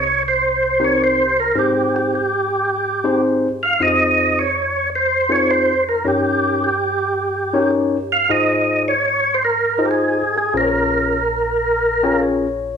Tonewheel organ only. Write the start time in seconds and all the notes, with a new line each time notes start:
Already playing: C#5
0.28 C5
0.85 C#5
1.04 C5
1.40 A#4
1.59 G4
1.96 G4
2.15 G4
3.63 F5
3.83 D#5
4.39 C#5
4.95 C5
5.32 C#5
5.51 C5
5.89 A#4
6.08 G4
6.64 G4
8.12 F5
8.31 D#5
8.88 C#5
9.34 C5
9.45 A#4
9.85 G4
9.91 G#4
10.38 G#4
10.57 A#4